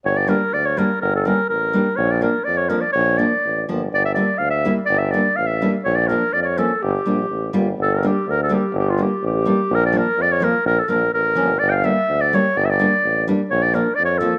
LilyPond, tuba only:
\new Staff \with { instrumentName = "Tuba" } { \clef bass \time 2/4 \tempo 4 = 124 g,,4 d,4 | g,,4 a,,4 | bes,,4 f,4 | bes,,4 a,,8 g,,8 |
g,,4 d,4 | g,,4 a,,4 | bes,,4 f,4 | g,,8 bes,,8 a,,8 g,,8 |
g,,4 d,4 | g,,4 a,,4 | bes,,4 f,4 | bes,,8 bes,,8 a,,8 g,,8 |
g,,4 d,4 | g,,4 a,,4 | bes,,4 f,4 | }